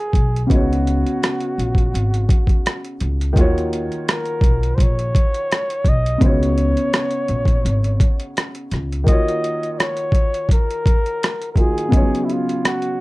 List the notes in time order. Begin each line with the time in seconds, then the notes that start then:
Already playing: D#3 A#3 F4 F#4 G#4 C#5
0.13 B1, kick, closed hi-hat
0.36 closed hi-hat
0.44 C#3 G#4
0.48 C#2 B3 D#4 F#4, kick, closed hi-hat
0.53 F#4 C#5
0.73 closed hi-hat
0.87 closed hi-hat
1.07 closed hi-hat
1.23 cross-stick, closed hi-hat
1.40 closed hi-hat
1.58 A#1, closed hi-hat
1.75 kick, closed hi-hat
1.94 G#1, closed hi-hat
2.14 closed hi-hat
2.29 kick, closed hi-hat
2.47 kick, closed hi-hat
2.66 cross-stick, closed hi-hat
2.85 closed hi-hat
3.00 C#2, closed hi-hat
3.21 closed hi-hat
3.33 D#2 D#3 A#3, kick
3.37 F4 F#4 C#5, closed hi-hat
3.58 closed hi-hat
3.73 closed hi-hat
3.92 closed hi-hat
4.09 A#4, cross-stick, closed hi-hat
4.25 closed hi-hat
4.41 B1, kick, closed hi-hat
4.63 closed hi-hat
4.75 A#1 C5, kick
4.80 C#5, closed hi-hat
4.99 closed hi-hat
5.15 kick, closed hi-hat
5.34 closed hi-hat
5.52 cross-stick, closed hi-hat
5.70 closed hi-hat
5.85 B1 D#5, kick, closed hi-hat
6.06 closed hi-hat
6.18 C#2 C#3 B3, kick, closed hi-hat
6.22 D#4 F#4 C#5
6.43 closed hi-hat
6.58 closed hi-hat
6.77 closed hi-hat
6.93 cross-stick, closed hi-hat
7.11 closed hi-hat
7.28 A#1, closed hi-hat
7.45 kick, closed hi-hat
7.65 G#1, closed hi-hat
7.84 closed hi-hat
8.00 kick, closed hi-hat
8.20 closed hi-hat
8.37 cross-stick, closed hi-hat
8.55 closed hi-hat
8.71 C#2, cross-stick, closed hi-hat
8.92 closed hi-hat
9.04 D#3 A#3, kick
9.08 F4 F#4 D#5, closed hi-hat
9.12 C#5
9.28 closed hi-hat
9.44 closed hi-hat
9.63 closed hi-hat
9.73 D#5
9.78 C#5, cross-stick, closed hi-hat
9.97 closed hi-hat
10.12 kick, closed hi-hat
10.34 closed hi-hat
10.49 A#4, kick, closed hi-hat
10.71 closed hi-hat
10.86 kick, closed hi-hat
11.06 closed hi-hat
11.23 cross-stick, closed hi-hat
11.42 closed hi-hat
11.52 D#3 A#3 A#4, kick
11.57 F4 F#4 G#4 A#4, closed hi-hat
11.78 closed hi-hat
11.89 C#3 B3, kick
11.93 D#4 F4 C#5, closed hi-hat
12.01 F#3
12.15 closed hi-hat
12.24 E4
12.30 F4, closed hi-hat
12.49 closed hi-hat
12.65 F#4, cross-stick, closed hi-hat
12.82 closed hi-hat